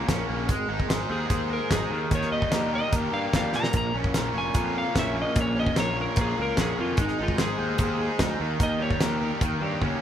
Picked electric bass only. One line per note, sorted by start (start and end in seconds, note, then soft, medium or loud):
0.08 0.23 A#1 medium
0.29 0.49 A#1 medium
0.49 0.63 G#1 medium
0.69 0.83 G#1 medium
0.89 1.03 G#1 medium
1.10 1.24 D#2 medium
1.30 1.59 D#2 medium
1.71 1.85 G#1 medium
1.91 2.05 D#2 medium
2.11 2.40 D#2 medium
2.51 2.80 D#2 medium
2.92 3.07 D#2 medium
3.12 3.27 G2 medium
3.33 3.48 D#2 medium
3.53 3.67 A#2 medium
3.74 3.88 A#1 medium
3.94 4.09 A#1 medium
4.14 4.28 A#1 medium
4.34 4.49 F1 medium
4.55 4.83 F2 medium
4.95 5.24 A#1 medium
5.36 5.65 A#1 medium
5.77 6.06 A#1 medium
6.17 6.31 A#1 medium
6.38 6.52 C#2 medium
6.57 6.72 A#1 loud
6.79 6.93 F2 medium
6.98 7.12 G#1 medium
7.19 7.33 G#1 medium
7.39 7.54 G#1 medium
7.59 7.74 D#2 medium
7.79 8.08 D#2 medium
8.19 8.34 D2 medium
8.40 8.54 D#2 medium
8.60 8.89 D#2 loud
9.01 9.30 D#2 medium
9.41 9.56 D#2 medium
9.61 9.76 G2 medium
9.82 9.96 D#2 medium